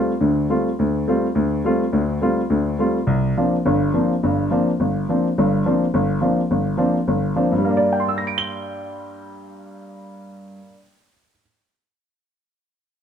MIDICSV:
0, 0, Header, 1, 2, 480
1, 0, Start_track
1, 0, Tempo, 285442
1, 1325, Time_signature, 4, 2, 24, 8
1, 21906, End_track
2, 0, Start_track
2, 0, Title_t, "Grand piano"
2, 0, Program_c, 0, 0
2, 0, Note_on_c, 0, 55, 49
2, 0, Note_on_c, 0, 57, 46
2, 0, Note_on_c, 0, 60, 46
2, 0, Note_on_c, 0, 65, 56
2, 184, Note_off_c, 0, 55, 0
2, 187, Note_off_c, 0, 57, 0
2, 188, Note_off_c, 0, 60, 0
2, 190, Note_off_c, 0, 65, 0
2, 347, Note_on_c, 0, 38, 60
2, 353, Note_on_c, 0, 50, 63
2, 765, Note_off_c, 0, 38, 0
2, 768, Note_off_c, 0, 50, 0
2, 835, Note_on_c, 0, 55, 48
2, 837, Note_on_c, 0, 57, 48
2, 838, Note_on_c, 0, 60, 42
2, 847, Note_on_c, 0, 65, 56
2, 1142, Note_off_c, 0, 55, 0
2, 1143, Note_off_c, 0, 57, 0
2, 1144, Note_off_c, 0, 60, 0
2, 1149, Note_off_c, 0, 65, 0
2, 1333, Note_on_c, 0, 38, 63
2, 1740, Note_off_c, 0, 38, 0
2, 1810, Note_on_c, 0, 57, 50
2, 1811, Note_on_c, 0, 55, 51
2, 1813, Note_on_c, 0, 60, 52
2, 1828, Note_on_c, 0, 65, 54
2, 2111, Note_off_c, 0, 57, 0
2, 2112, Note_off_c, 0, 55, 0
2, 2113, Note_off_c, 0, 60, 0
2, 2120, Note_off_c, 0, 65, 0
2, 2275, Note_on_c, 0, 38, 68
2, 2691, Note_off_c, 0, 38, 0
2, 2763, Note_on_c, 0, 55, 54
2, 2780, Note_on_c, 0, 57, 50
2, 2782, Note_on_c, 0, 60, 45
2, 2787, Note_on_c, 0, 65, 56
2, 3069, Note_off_c, 0, 55, 0
2, 3078, Note_off_c, 0, 57, 0
2, 3078, Note_off_c, 0, 60, 0
2, 3081, Note_off_c, 0, 65, 0
2, 3241, Note_on_c, 0, 38, 68
2, 3243, Note_on_c, 0, 50, 68
2, 3656, Note_off_c, 0, 38, 0
2, 3657, Note_off_c, 0, 50, 0
2, 3725, Note_on_c, 0, 55, 53
2, 3728, Note_on_c, 0, 60, 47
2, 3729, Note_on_c, 0, 57, 45
2, 3741, Note_on_c, 0, 65, 59
2, 4031, Note_off_c, 0, 55, 0
2, 4033, Note_off_c, 0, 57, 0
2, 4033, Note_off_c, 0, 60, 0
2, 4039, Note_off_c, 0, 65, 0
2, 4204, Note_on_c, 0, 38, 66
2, 4217, Note_on_c, 0, 50, 65
2, 4619, Note_off_c, 0, 38, 0
2, 4626, Note_off_c, 0, 50, 0
2, 4687, Note_on_c, 0, 55, 54
2, 4690, Note_on_c, 0, 57, 45
2, 4696, Note_on_c, 0, 60, 44
2, 4708, Note_on_c, 0, 65, 56
2, 4993, Note_off_c, 0, 55, 0
2, 4995, Note_off_c, 0, 57, 0
2, 4998, Note_off_c, 0, 60, 0
2, 5004, Note_off_c, 0, 65, 0
2, 5162, Note_on_c, 0, 36, 68
2, 5578, Note_off_c, 0, 36, 0
2, 5671, Note_on_c, 0, 58, 44
2, 5673, Note_on_c, 0, 53, 47
2, 5677, Note_on_c, 0, 60, 46
2, 5681, Note_on_c, 0, 62, 61
2, 5966, Note_off_c, 0, 58, 0
2, 5967, Note_off_c, 0, 53, 0
2, 5969, Note_off_c, 0, 60, 0
2, 5971, Note_off_c, 0, 62, 0
2, 6144, Note_on_c, 0, 43, 59
2, 6149, Note_on_c, 0, 31, 70
2, 6551, Note_off_c, 0, 43, 0
2, 6554, Note_off_c, 0, 31, 0
2, 6621, Note_on_c, 0, 53, 54
2, 6631, Note_on_c, 0, 58, 46
2, 6632, Note_on_c, 0, 60, 49
2, 6634, Note_on_c, 0, 62, 53
2, 6922, Note_off_c, 0, 53, 0
2, 6927, Note_off_c, 0, 58, 0
2, 6928, Note_off_c, 0, 60, 0
2, 6928, Note_off_c, 0, 62, 0
2, 7118, Note_on_c, 0, 43, 68
2, 7124, Note_on_c, 0, 31, 63
2, 7519, Note_off_c, 0, 43, 0
2, 7522, Note_off_c, 0, 31, 0
2, 7578, Note_on_c, 0, 58, 53
2, 7582, Note_on_c, 0, 53, 52
2, 7596, Note_on_c, 0, 60, 45
2, 7598, Note_on_c, 0, 62, 60
2, 7881, Note_off_c, 0, 58, 0
2, 7884, Note_off_c, 0, 53, 0
2, 7890, Note_off_c, 0, 60, 0
2, 7892, Note_off_c, 0, 62, 0
2, 8071, Note_on_c, 0, 31, 60
2, 8476, Note_off_c, 0, 31, 0
2, 8561, Note_on_c, 0, 53, 50
2, 8571, Note_on_c, 0, 58, 44
2, 8574, Note_on_c, 0, 60, 51
2, 8578, Note_on_c, 0, 62, 54
2, 8853, Note_off_c, 0, 53, 0
2, 8858, Note_off_c, 0, 58, 0
2, 8860, Note_off_c, 0, 60, 0
2, 8862, Note_off_c, 0, 62, 0
2, 9049, Note_on_c, 0, 43, 67
2, 9050, Note_on_c, 0, 31, 68
2, 9446, Note_off_c, 0, 43, 0
2, 9447, Note_off_c, 0, 31, 0
2, 9510, Note_on_c, 0, 53, 53
2, 9517, Note_on_c, 0, 58, 50
2, 9523, Note_on_c, 0, 60, 51
2, 9523, Note_on_c, 0, 62, 62
2, 9808, Note_off_c, 0, 53, 0
2, 9812, Note_off_c, 0, 58, 0
2, 9815, Note_off_c, 0, 60, 0
2, 9815, Note_off_c, 0, 62, 0
2, 9989, Note_on_c, 0, 31, 67
2, 10395, Note_off_c, 0, 31, 0
2, 10444, Note_on_c, 0, 53, 53
2, 10455, Note_on_c, 0, 60, 47
2, 10459, Note_on_c, 0, 58, 46
2, 10464, Note_on_c, 0, 62, 55
2, 10755, Note_off_c, 0, 53, 0
2, 10761, Note_off_c, 0, 60, 0
2, 10763, Note_off_c, 0, 58, 0
2, 10765, Note_off_c, 0, 62, 0
2, 10945, Note_on_c, 0, 31, 67
2, 11354, Note_off_c, 0, 31, 0
2, 11391, Note_on_c, 0, 53, 54
2, 11400, Note_on_c, 0, 58, 46
2, 11404, Note_on_c, 0, 60, 50
2, 11411, Note_on_c, 0, 62, 60
2, 11709, Note_off_c, 0, 53, 0
2, 11713, Note_off_c, 0, 58, 0
2, 11715, Note_off_c, 0, 60, 0
2, 11719, Note_off_c, 0, 62, 0
2, 11901, Note_on_c, 0, 31, 63
2, 12311, Note_off_c, 0, 31, 0
2, 12373, Note_on_c, 0, 53, 48
2, 12379, Note_on_c, 0, 58, 47
2, 12384, Note_on_c, 0, 62, 61
2, 12388, Note_on_c, 0, 60, 44
2, 12641, Note_on_c, 0, 43, 62
2, 12680, Note_off_c, 0, 53, 0
2, 12682, Note_off_c, 0, 58, 0
2, 12685, Note_off_c, 0, 62, 0
2, 12687, Note_off_c, 0, 60, 0
2, 12748, Note_on_c, 0, 55, 61
2, 12856, Note_on_c, 0, 58, 58
2, 12959, Note_on_c, 0, 62, 57
2, 13067, Note_on_c, 0, 74, 66
2, 13328, Note_on_c, 0, 79, 46
2, 13450, Note_on_c, 0, 84, 44
2, 13597, Note_on_c, 0, 88, 41
2, 13751, Note_on_c, 0, 94, 40
2, 13908, Note_on_c, 0, 98, 39
2, 14090, Note_on_c, 0, 103, 36
2, 17788, Note_off_c, 0, 43, 0
2, 17895, Note_off_c, 0, 55, 0
2, 18003, Note_off_c, 0, 58, 0
2, 18106, Note_off_c, 0, 62, 0
2, 18214, Note_off_c, 0, 74, 0
2, 18408, Note_off_c, 0, 79, 0
2, 18530, Note_off_c, 0, 84, 0
2, 18677, Note_off_c, 0, 88, 0
2, 18831, Note_off_c, 0, 94, 0
2, 18988, Note_off_c, 0, 98, 0
2, 19170, Note_off_c, 0, 103, 0
2, 21906, End_track
0, 0, End_of_file